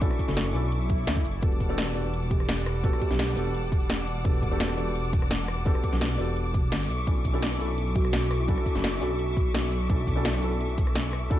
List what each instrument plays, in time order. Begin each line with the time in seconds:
Already playing: felt piano E4 F#4 A4, string section A4 E5 C#6 D6
0.00 felt piano C#4 D4 E4 F#4 A4, kick, closed hi-hat
0.11 cross-stick, shaker
0.19 kick, closed hi-hat, shaker
0.27 detuned saw bass F#1, felt piano C#4 D4 E4 F#4 A4, snare
0.37 snare, closed hi-hat
0.46 cross-stick
0.53 detuned saw bass B1, felt piano C#4 D4 E4 F#4 A4, open hi-hat, shaker
0.72 closed hi-hat, swell
0.81 shaker
0.90 kick, closed hi-hat, shaker
1.07 detuned saw bass D2, snare, closed hi-hat
1.16 kick, shaker
1.25 detuned saw bass F#1, closed hi-hat, shaker
1.42 detuned saw bass E1, string section G3 F#5 A5 D6, felt piano B3 D4 F#4 G4 A4, kick, closed hi-hat
1.52 shaker
1.60 kick, closed hi-hat, shaker
1.69 felt piano B3 D4 F#4 G4 A4, kalimba A4
1.78 snare, closed hi-hat
1.87 cross-stick
1.94 detuned saw bass E1, felt piano B3 D4 F#4 G4 A4, closed hi-hat, shaker
2.13 closed hi-hat
2.22 shaker
2.31 kalimba G4, kick, closed hi-hat, shaker
2.40 cross-stick
2.49 snare, closed hi-hat
2.66 cross-stick, closed hi-hat, shaker
2.83 felt piano B3 D4 F#4 G4 A4, kick, closed hi-hat
2.93 cross-stick, shaker
3.01 kalimba G4, kick, closed hi-hat, shaker
3.10 detuned saw bass B1, felt piano B3 D4 F#4 G4 A4, kalimba G4, snare
3.19 snare, closed hi-hat
3.35 detuned saw bass E1, felt piano B3 D4 F#4 G4 A4, open hi-hat, shaker
3.55 closed hi-hat
3.64 shaker
3.72 kick, closed hi-hat, shaker
3.90 snare, closed hi-hat
4.07 closed hi-hat, shaker
4.24 detuned saw bass E1, felt piano B3 D4 F#4 G4 A4, kick, closed hi-hat
4.34 shaker
4.42 kick, closed hi-hat, shaker
4.51 felt piano B3 D4 F#4 G4 A4
4.60 snare, closed hi-hat
4.69 cross-stick
4.76 detuned saw bass E1, felt piano B3 D4 F#4 G4 A4, closed hi-hat, shaker
4.95 closed hi-hat
5.05 shaker
5.13 kick, closed hi-hat, shaker
5.22 cross-stick
5.31 snare, closed hi-hat
5.48 cross-stick, closed hi-hat, shaker
5.65 felt piano B3 D4 F#4 G4 A4, kick, closed hi-hat
5.75 cross-stick, shaker
5.84 kick, closed hi-hat, shaker
5.92 detuned saw bass B1, felt piano B3 D4 F#4 G4 A4, snare
6.01 snare, closed hi-hat
6.17 detuned saw bass E1, felt piano B3 D4 F#4 G4 A4, open hi-hat, shaker
6.37 closed hi-hat
6.46 shaker
6.54 kick, closed hi-hat, shaker
6.72 detuned saw bass G1, snare, closed hi-hat
6.90 detuned saw bass B1, string section A4 E5 C#6, closed hi-hat, shaker
7.07 detuned saw bass B1, felt piano C#4 D4 E4 F#4 A4, kick, closed hi-hat
7.16 shaker
7.25 kick, closed hi-hat, shaker
7.33 felt piano C#4 D4 E4 F#4 A4, kalimba A4
7.43 snare, closed hi-hat
7.52 cross-stick
7.59 detuned saw bass B1, felt piano C#4 D4 E4 F#4 A4, closed hi-hat, shaker
7.78 closed hi-hat
7.87 shaker
7.95 kalimba F#4, kick, closed hi-hat, shaker
8.05 cross-stick
8.13 snare, closed hi-hat
8.31 cross-stick, closed hi-hat, shaker
8.40 kalimba E4
8.48 felt piano C#4 D4 E4 F#4 A4, kick, closed hi-hat
8.58 cross-stick, shaker
8.66 kick, closed hi-hat, shaker
8.74 detuned saw bass F#1, felt piano C#4 D4 E4 F#4 A4, snare
8.84 snare, closed hi-hat
9.00 detuned saw bass B1, felt piano C#4 D4 E4 F#4 A4, kalimba F#4, open hi-hat, shaker
9.19 closed hi-hat
9.28 shaker
9.37 kick, closed hi-hat, shaker
9.55 snare, closed hi-hat
9.72 closed hi-hat, shaker
9.89 detuned saw bass B1, felt piano C#4 D4 E4 F#4 A4, kick, closed hi-hat
9.99 shaker
10.07 kick, closed hi-hat, shaker
10.16 felt piano C#4 D4 E4 F#4 A4
10.25 snare, closed hi-hat
10.34 cross-stick
10.41 detuned saw bass B1, felt piano C#4 D4 E4 F#4 A4, closed hi-hat, shaker
10.60 closed hi-hat
10.69 shaker
10.78 kick, closed hi-hat, shaker
10.87 cross-stick
10.95 snare, closed hi-hat
11.13 cross-stick, closed hi-hat, shaker
11.30 felt piano C#4 D4 E4 F#4 A4, kick, closed hi-hat